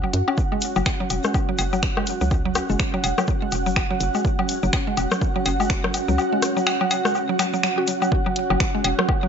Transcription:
0.00 0.10 E1 medium
0.00 0.07 F#3 medium
0.00 9.28 C#4 medium
0.00 9.28 F#4 medium
0.00 9.28 F#5 medium
0.00 low woodblock soft
0.13 0.22 F#2 loud
0.13 closed hi-hat medium
0.28 0.31 C#4 loud
0.28 low woodblock medium
0.38 kick loud
0.38 shaker soft
0.52 0.57 G#3 medium
0.52 low woodblock soft
0.61 closed hi-hat medium
0.61 shaker loud
0.76 0.82 F#1 loud
0.76 0.78 F#3 loud
0.76 low woodblock medium
0.76 shaker soft
0.86 finger snap medium
0.86 kick loud
0.86 cowbell medium
0.86 shaker soft
1.00 1.03 F#3 loud
1.10 1.19 E1 medium
1.10 closed hi-hat medium
1.10 low woodblock soft
1.10 shaker loud
1.23 1.29 G#3 medium
1.23 cross-stick medium
1.23 shaker soft
1.34 kick loud
1.34 low woodblock medium
1.34 shaker soft
1.49 1.51 F#3 loud
1.58 2.13 F#1 medium
1.58 closed hi-hat medium
1.58 cowbell medium
1.58 shaker loud
1.73 1.76 F#3 loud
1.73 low woodblock soft
1.73 shaker soft
1.83 finger snap medium
1.83 kick loud
1.83 shaker soft
1.97 2.02 G#3 medium
1.97 cross-stick medium
1.97 low woodblock medium
2.07 closed hi-hat medium
2.07 shaker medium
2.21 2.61 C#2 medium
2.21 2.23 F#3 loud
2.21 shaker medium
2.31 kick loud
2.31 low woodblock soft
2.31 shaker soft
2.45 2.49 F#3 loud
2.55 cross-stick medium
2.55 closed hi-hat medium
2.55 low woodblock medium
2.55 shaker medium
2.69 2.76 F#1 medium
2.69 2.74 G#3 medium
2.69 shaker soft
2.79 finger snap medium
2.79 kick loud
2.79 shaker soft
2.94 2.96 F#3 loud
2.94 low woodblock soft
3.04 3.13 E1 medium
3.04 closed hi-hat medium
3.04 cowbell medium
3.04 shaker medium
3.18 3.21 F#3 loud
3.18 cross-stick medium
3.18 low woodblock medium
3.18 shaker medium
3.27 kick loud
3.27 shaker soft
3.42 3.47 G#3 medium
3.52 3.68 E1 medium
3.52 closed hi-hat medium
3.52 low woodblock soft
3.52 shaker medium
3.66 3.95 F#1 loud
3.66 3.68 F#3 loud
3.66 shaker medium
3.76 finger snap medium
3.76 kick loud
3.76 low woodblock medium
3.91 3.94 F#3 loud
4.00 4.09 F#1 loud
4.00 closed hi-hat medium
4.00 shaker medium
4.15 4.19 G#3 medium
4.15 low woodblock soft
4.15 shaker medium
4.25 kick loud
4.25 shaker soft
4.39 4.41 F#3 loud
4.39 low woodblock medium
4.49 closed hi-hat medium
4.49 shaker medium
4.63 4.69 F#1 loud
4.63 4.66 F#3 loud
4.63 shaker soft
4.73 finger snap medium
4.73 kick loud
4.73 cowbell medium
4.73 low woodblock soft
4.73 shaker soft
4.87 4.92 G#3 medium
4.97 5.06 E1 medium
4.97 closed hi-hat medium
4.97 low woodblock medium
4.97 shaker medium
5.11 5.14 F#3 loud
5.11 cross-stick medium
5.11 shaker medium
5.22 kick loud
5.22 shaker soft
5.36 5.39 F#3 loud
5.36 low woodblock soft
5.46 6.00 F#1 medium
5.46 closed hi-hat medium
5.46 cowbell medium
5.46 shaker medium
5.60 5.65 G#3 medium
5.60 low woodblock medium
5.60 shaker soft
5.70 finger snap medium
5.70 kick loud
5.84 5.86 F#3 loud
5.84 cross-stick medium
5.94 closed hi-hat medium
5.94 low woodblock soft
5.94 shaker medium
6.08 6.18 C#2 medium
6.08 6.12 F#3 loud
6.08 shaker soft
6.18 low woodblock medium
6.18 shaker soft
6.33 6.37 G#3 medium
6.42 cross-stick medium
6.42 closed hi-hat medium
6.42 shaker medium
6.57 6.59 F#3 loud
6.57 low woodblock soft
6.57 shaker soft
6.66 finger snap medium
6.66 cowbell medium
6.66 shaker soft
6.81 6.84 F#3 loud
6.81 low woodblock medium
6.91 closed hi-hat medium
6.91 cowbell medium
6.91 shaker medium
7.05 7.10 G#3 medium
7.05 cross-stick medium
7.05 shaker soft
7.15 low woodblock soft
7.15 shaker soft
7.29 7.31 F#3 loud
7.39 7.46 F#3 loud
7.39 finger snap medium
7.39 closed hi-hat medium
7.39 low woodblock medium
7.39 shaker medium
7.53 7.56 F#3 loud
7.53 shaker soft
7.63 7.68 F#3 medium
7.63 finger snap medium
7.63 shaker soft
7.78 7.82 F#4 medium
7.78 low woodblock soft
7.87 7.92 F#3 medium
7.87 closed hi-hat medium
7.87 shaker medium
8.02 8.07 F#3 loud
8.02 low woodblock medium
8.02 shaker medium
8.12 kick loud
8.26 8.28 F#3 loud
8.26 low woodblock soft
8.36 closed hi-hat medium
8.50 8.56 F#1 medium
8.50 8.53 F#3 loud
8.50 low woodblock medium
8.60 finger snap loud
8.60 kick loud
8.75 8.79 G#3 medium
8.84 8.93 E1 medium
8.84 closed hi-hat medium
8.84 cowbell medium
8.84 low woodblock soft
8.99 9.01 F#3 loud
8.99 cross-stick medium
9.09 kick loud
9.09 low woodblock medium
9.23 9.26 F#3 loud

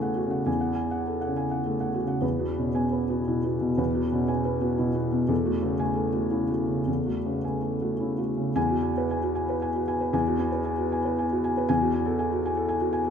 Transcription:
0.00 0.41 E2 medium
0.00 0.26 C#3 soft
0.00 0.18 A3 soft
0.00 0.49 A4 soft
0.00 0.02 F#5 medium
0.00 0.25 F#5 soft
0.00 0.46 G#5 medium
0.16 0.40 F#4 soft
0.26 0.58 C#3 soft
0.31 0.55 F#5 soft
0.46 2.18 E2 medium
0.46 0.71 G#5 soft
0.61 0.85 F#5 soft
0.75 1.00 G#5 soft
0.91 1.16 F#5 soft
1.07 1.31 A4 soft
1.21 1.46 F#5 soft
1.26 1.59 C#3 soft
1.37 1.61 G#5 soft
1.51 1.75 F#5 soft
1.65 1.97 A3 soft
1.65 1.89 A4 soft
1.80 2.03 F#5 soft
1.94 2.17 F#4 soft
2.04 2.22 C#3 soft
2.04 2.22 F#5 soft
2.21 3.74 E2 soft
2.21 2.50 B4 soft
2.39 2.68 B3 soft
2.39 2.68 F#4 soft
2.58 2.86 B2 soft
2.58 2.76 C#4 soft
2.75 3.03 B3 soft
2.75 3.03 G#5 soft
2.92 3.20 B4 soft
3.09 3.37 B3 soft
3.09 3.37 F#4 soft
3.27 3.55 B2 soft
3.27 3.45 E4 soft
3.44 3.71 B3 soft
3.44 3.72 F#4 soft
3.60 3.88 B2 soft
3.77 5.26 E2 medium
3.77 4.06 B4 soft
3.94 4.22 B3 soft
3.94 4.22 F#4 soft
4.12 4.40 B2 soft
4.12 4.29 C#4 soft
4.28 4.56 B3 soft
4.28 4.56 G#5 soft
4.45 4.73 B4 soft
4.61 4.89 B3 soft
4.61 4.89 F#4 soft
4.78 5.06 B2 soft
4.78 4.96 E4 soft
4.94 5.23 B3 soft
4.94 5.23 F#4 soft
5.11 5.29 B2 soft
5.28 6.82 E2 medium
5.28 5.56 A4 medium
5.45 5.73 A3 soft
5.45 5.73 F#4 medium
5.62 5.90 C#3 soft
5.62 5.80 B3 soft
5.79 6.07 A3 soft
5.79 6.07 G#5 medium
5.96 6.24 A4 soft
6.13 6.42 A3 soft
6.13 6.42 F#4 soft
6.31 6.61 C#3 soft
6.31 6.50 E4 soft
6.50 6.79 A3 soft
6.50 6.80 F#4 soft
6.68 6.99 C#3 soft
6.87 8.52 E2 soft
6.87 7.18 A4 soft
7.06 7.37 A3 soft
7.06 7.37 F#4 soft
7.25 7.56 C#3 soft
7.25 7.45 B3 soft
7.44 7.74 A3 soft
7.44 7.74 G#5 soft
7.62 7.92 A4 soft
7.81 8.11 A3 soft
7.81 8.12 F#4 soft
8.00 8.30 C#3 soft
8.00 8.19 E4 soft
8.18 8.49 A3 soft
8.18 8.49 F#4 soft
8.37 8.56 C#3 soft
8.56 10.09 E2 medium
8.56 8.77 G#5 medium
8.70 8.91 F#4 soft
8.83 9.04 G#5 medium
8.97 9.18 B4 medium
9.11 9.31 G#5 medium
9.23 9.43 F#4 soft
9.35 9.56 G#5 medium
9.49 9.70 B4 medium
9.62 9.82 G#5 medium
9.75 9.95 F#4 soft
9.88 10.08 G#5 medium
10.01 10.21 B4 medium
10.13 11.64 E2 medium
10.13 10.34 G#5 medium
10.27 10.47 F#4 medium
10.39 10.60 B3 medium
10.39 10.60 G#5 medium
10.52 10.73 B4 medium
10.65 10.85 G#5 medium
10.78 10.99 F#4 medium
10.92 11.12 G#5 medium
11.05 11.25 B4 medium
11.19 11.38 G#5 medium
11.32 11.51 F#4 medium
11.44 11.64 G#5 medium
11.57 11.69 B4 medium
11.69 13.10 E2 medium
11.69 11.89 G#5 medium
11.82 12.02 F#4 medium
11.94 12.14 G#5 medium
12.06 12.26 A4 medium
12.19 12.39 G#5 medium
12.32 12.52 F#4 medium
12.45 12.65 G#5 medium
12.57 12.76 A4 medium
12.69 12.88 G#5 medium
12.80 13.00 F#4 medium
12.93 13.10 G#5 medium
13.04 13.10 A4 medium

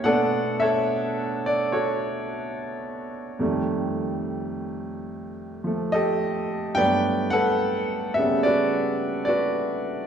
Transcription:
0.04 3.40 B2 medium
0.04 3.40 A3 soft
0.04 3.40 B3 medium
0.04 3.41 D4 medium
0.04 0.61 A4 medium
0.04 1.45 D5 medium
0.04 0.62 F#5 loud
0.60 1.72 A4 medium
0.60 1.71 C#5 medium
0.60 1.40 E5 medium
1.46 1.71 D5 medium
1.72 3.36 F#4 medium
1.72 3.37 A4 medium
1.72 3.08 C#5 medium
3.39 6.75 F2 medium
3.39 6.76 D#3 soft
3.39 6.76 G3 soft
3.39 5.65 A3 medium
5.64 6.76 F3 soft
5.64 6.76 A3 medium
5.92 6.73 G4 medium
5.92 6.73 A4 medium
5.92 6.72 D#5 medium
6.75 10.07 G2 medium
6.75 10.07 F#3 soft
6.75 10.07 A3 soft
6.75 7.32 B4 medium
6.75 8.40 D5 medium
6.75 7.33 G5 loud
6.80 8.16 B3 medium
7.30 8.96 A4 medium
7.30 8.45 B4 medium
7.30 8.18 F#5 loud
8.14 10.07 G3 soft
8.14 10.07 B3 soft
8.14 8.21 E5 medium
8.19 10.07 C#3 medium
8.43 9.27 F#4 medium
8.43 9.28 B4 medium
8.43 9.23 D5 medium
9.25 10.07 F#4 medium
9.25 10.07 D5 medium
9.29 10.07 B4 medium

